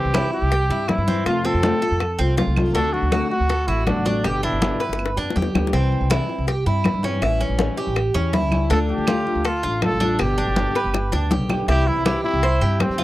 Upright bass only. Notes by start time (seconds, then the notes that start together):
0.05 C2
0.42 C2
0.70 G2
0.98 G2
1.25 F2
1.54 F2
1.91 F2
2.19 C2
2.47 C2
2.74 D2
3.02 D2
3.40 D2
3.68 A1
3.96 A1
4.24 G1
4.52 G1
4.89 G1
5.17 F2
5.36 E2
5.55 D2
5.73 C2
6.01 C2
6.38 C2
6.66 G2
6.94 G2
7.22 A1
7.49 A1
7.87 A1
8.15 E2
8.43 C#2
8.70 D2
8.98 D2
9.35 D2
9.64 A1
9.92 A1
10.20 G1
10.47 G1
10.84 G1
11.12 D2
11.40 B1
11.68 C2
11.96 C2
12.34 C2
12.61 G2
12.89 G2